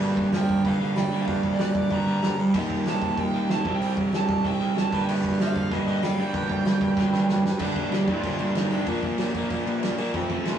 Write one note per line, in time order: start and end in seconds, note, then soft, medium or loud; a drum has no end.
0.00 1.09 G2 medium
0.00 0.32 G2 loud
0.00 1.10 D3 loud
0.00 1.12 G3 loud
0.00 1.13 A#3 loud
0.00 1.12 D4 loud
0.17 kick loud
0.32 0.63 F3 loud
0.32 snare loud
0.32 open hi-hat medium
0.37 0.68 G5 medium
0.49 kick loud
0.65 0.80 G2 loud
0.65 0.80 G2 medium
0.65 0.80 D3 medium
0.65 0.80 G3 medium
0.65 0.99 F5 medium
0.65 kick loud
0.65 open hi-hat medium
0.80 0.95 G2 medium
0.80 1.10 G2 medium
0.80 1.10 D3 medium
0.80 1.13 G3 medium
0.96 1.27 G3 medium
0.96 1.21 G5 medium
0.96 snare loud
0.96 open hi-hat medium
1.11 2.37 G2 medium
1.11 2.37 D3 loud
1.11 2.55 G3 medium
1.11 2.38 A#3 loud
1.11 2.38 D4 loud
1.21 1.28 F5 medium
1.27 1.43 G2 loud
1.27 1.54 F5 medium
1.27 kick loud
1.27 open hi-hat medium
1.43 1.58 F2 medium
1.43 kick medium
1.54 1.60 D5 medium
1.59 1.74 G2 medium
1.59 1.93 D5 medium
1.59 snare loud
1.59 open hi-hat medium
1.75 1.90 G2 medium
1.75 kick loud
1.90 2.06 G2 medium
1.90 2.06 D3 medium
1.90 2.06 G3 medium
1.90 2.37 A#5 medium
1.90 kick medium
1.90 open hi-hat medium
2.06 2.22 G2 medium
2.06 2.39 G2 medium
2.06 2.38 D3 medium
2.06 2.55 G3 medium
2.22 2.37 G2 medium
2.22 snare loud
2.22 open hi-hat medium
2.38 2.54 F2 medium
2.54 2.85 D#2 loud
2.54 3.63 D#3 medium
2.54 3.65 G3 medium
2.54 3.65 A#3 medium
2.54 3.66 D#4 medium
2.54 kick loud
2.54 crash loud
2.70 kick medium
2.86 3.17 C3 loud
2.86 3.19 A5 loud
2.86 snare loud
2.86 open hi-hat medium
3.02 kick loud
3.17 3.33 D#2 medium
3.17 3.51 G5 loud
3.17 kick loud
3.17 open hi-hat medium
3.33 3.49 D#2 medium
3.33 3.48 D#3 medium
3.33 3.49 A#3 medium
3.33 3.48 D#4 medium
3.49 3.64 D#3 medium
3.49 3.65 D#3 medium
3.49 3.65 A#3 medium
3.49 3.66 D#4 medium
3.49 3.73 A5 loud
3.49 snare loud
3.49 open hi-hat medium
3.64 3.80 C2 loud
3.64 4.90 C3 medium
3.64 4.93 G3 loud
3.64 4.92 C4 loud
3.64 kick loud
3.68 4.92 D#4 loud
3.75 3.89 G5 loud
3.81 3.97 C2 medium
3.81 open hi-hat medium
3.97 kick medium
4.12 4.28 C2 loud
4.12 4.46 A5 loud
4.12 snare loud
4.12 open hi-hat medium
4.29 4.44 C2 loud
4.29 kick loud
4.44 4.60 C2 medium
4.44 4.59 C3 medium
4.44 4.61 G3 loud
4.44 4.58 C4 medium
4.44 4.78 G5 loud
4.44 kick loud
4.44 open hi-hat medium
4.59 4.75 C2 medium
4.59 4.92 C3 medium
4.59 4.94 G3 medium
4.59 4.90 C4 medium
4.75 4.91 C2 medium
4.75 5.02 A5 loud
4.75 snare loud
4.75 open hi-hat medium
4.92 6.17 G2 loud
4.92 5.07 G2 loud
4.92 6.18 D3 medium
4.92 6.19 G3 loud
4.92 6.20 A#3 loud
4.92 6.20 D4 loud
4.92 kick loud
5.03 5.08 G5 medium
5.08 5.38 G2 loud
5.08 crash loud
5.24 kick medium
5.40 5.70 F3 loud
5.40 5.73 F5 medium
5.40 snare loud
5.40 open hi-hat medium
5.56 kick medium
5.71 5.90 G2 medium
5.71 5.86 G2 medium
5.71 5.86 D3 medium
5.71 5.87 G3 loud
5.71 6.04 D#5 loud
5.71 kick loud
5.71 open hi-hat medium
5.87 6.02 G2 medium
5.87 6.18 G2 medium
5.87 6.18 D3 medium
5.87 6.20 G3 medium
6.02 6.33 G3 medium
6.02 6.20 F5 medium
6.02 snare loud
6.02 open hi-hat medium
6.18 7.44 G2 medium
6.18 7.44 D3 medium
6.18 7.45 G3 loud
6.18 7.45 A#3 loud
6.18 7.45 D4 loud
6.18 7.46 G5 medium
6.33 6.49 G2 loud
6.33 kick loud
6.33 open hi-hat medium
6.50 6.64 F2 medium
6.50 kick medium
6.65 6.81 G2 medium
6.65 snare loud
6.65 open hi-hat medium
6.81 6.96 G2 medium
6.81 kick loud
6.96 7.12 G2 medium
6.96 7.12 D3 medium
6.96 7.11 G3 medium
6.96 kick loud
6.96 snare medium
7.12 7.28 G2 medium
7.12 7.44 G2 medium
7.12 7.44 D3 medium
7.12 7.43 G3 medium
7.12 snare medium
7.29 7.44 G2 medium
7.29 snare medium
7.44 7.59 G2 loud
7.44 snare loud
7.58 7.75 G2 medium
7.58 7.74 G2 loud
7.58 7.75 D3 medium
7.58 7.74 G3 loud
7.58 7.75 A#3 medium
7.58 7.74 D4 medium
7.58 7.94 D4 medium
7.58 kick loud
7.58 crash loud
7.58 crash medium
7.75 7.90 G2 medium
7.75 7.88 G2 medium
7.75 7.89 D3 medium
7.75 7.89 G3 loud
7.75 7.90 A#3 medium
7.75 7.90 D4 medium
7.75 kick medium
7.75 crash medium
7.89 8.06 F2 medium
7.89 8.07 G2 loud
7.89 8.06 D3 medium
7.89 8.06 G3 loud
7.89 8.07 A#3 loud
7.89 8.06 D4 loud
7.89 snare loud
7.89 crash medium
7.95 8.09 G4 loud
8.07 8.22 G2 medium
8.07 8.21 G2 medium
8.07 8.22 D3 medium
8.07 8.22 G3 medium
8.07 8.23 A#3 medium
8.07 8.23 D4 medium
8.07 8.53 F4 medium
8.07 kick loud
8.07 crash medium
8.22 8.37 F2 medium
8.22 8.39 G2 medium
8.22 8.38 D3 loud
8.22 8.38 G3 loud
8.22 8.37 A#3 loud
8.22 8.37 D4 loud
8.22 kick loud
8.22 crash medium
8.38 8.53 G2 medium
8.38 8.54 D3 medium
8.38 8.54 G3 medium
8.38 8.54 A#3 medium
8.38 8.55 D4 medium
8.38 crash medium
8.54 8.71 G2 loud
8.54 8.69 G2 medium
8.54 8.70 D3 medium
8.54 8.70 G3 loud
8.54 8.69 A#3 loud
8.54 8.69 D4 loud
8.54 8.74 D#4 medium
8.54 snare loud
8.54 crash loud
8.70 8.87 G2 medium
8.70 8.85 C3 loud
8.70 8.85 D3 medium
8.70 8.86 G3 loud
8.70 8.86 A#3 medium
8.70 8.85 D4 medium
8.70 crash medium
8.74 9.04 D4 medium
8.86 9.01 A#2 medium
8.86 9.02 F3 loud
8.86 9.00 A#3 loud
8.86 9.00 D4 loud
8.86 kick loud
8.86 crash medium
9.01 9.16 A#2 medium
9.01 9.17 A#2 medium
9.01 9.17 F3 medium
9.01 9.16 A#3 loud
9.01 9.17 D4 medium
9.01 kick medium
9.01 crash medium
9.17 9.33 A#2 medium
9.17 9.33 F3 loud
9.17 9.32 A#3 loud
9.17 9.31 D4 loud
9.17 snare loud
9.17 crash medium
9.32 9.47 A#2 medium
9.32 9.48 A#2 medium
9.32 9.48 F3 medium
9.32 9.49 A#3 medium
9.32 9.49 D4 loud
9.32 kick loud
9.32 crash medium
9.48 9.65 A#2 medium
9.48 9.64 A#2 medium
9.48 9.64 F3 loud
9.48 9.64 A#3 loud
9.48 9.64 D4 loud
9.48 kick loud
9.48 crash medium
9.65 9.80 G2 medium
9.65 9.80 A#2 medium
9.65 9.81 F3 medium
9.65 9.81 A#3 medium
9.65 9.82 D4 loud
9.65 crash medium
9.82 9.98 A#2 loud
9.82 9.96 A#2 medium
9.82 9.98 F3 loud
9.82 9.97 A#3 loud
9.82 9.97 D4 loud
9.82 snare loud
9.82 crash medium
9.98 10.12 A#2 loud
9.98 10.13 A#2 medium
9.98 10.13 F3 medium
9.98 10.13 A#3 medium
9.98 10.13 D4 medium
9.98 crash medium
10.13 10.29 F2 loud
10.13 10.28 F2 loud
10.13 10.29 C3 loud
10.13 10.28 F3 medium
10.13 10.28 A3 medium
10.13 10.28 C4 loud
10.13 10.47 C4 medium
10.13 kick loud
10.13 crash medium
10.29 10.44 F2 medium
10.29 10.43 F2 medium
10.29 10.44 C3 medium
10.29 10.44 F3 medium
10.29 10.45 A3 loud
10.29 10.46 C4 medium
10.29 kick medium
10.29 crash medium
10.44 10.59 D#2 loud
10.44 10.59 F2 medium
10.44 10.59 C3 loud
10.44 10.59 F3 loud
10.44 10.59 A3 loud
10.44 10.59 C4 medium
10.44 10.59 F4 loud
10.44 snare loud
10.44 crash medium